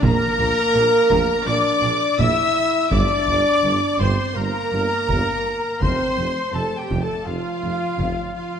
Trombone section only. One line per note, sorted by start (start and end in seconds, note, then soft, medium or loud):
0.01 1.46 A#3 loud
1.46 2.18 D4 medium
2.19 2.91 E4 medium
2.90 3.97 D4 medium
4.00 4.36 C4 medium
4.34 5.80 A#3 medium
5.80 6.37 C4 medium
6.54 6.77 A3 medium
6.77 7.01 G3 medium
7.00 7.25 A3 medium
7.24 8.31 F3 medium
8.34 8.60 F3 soft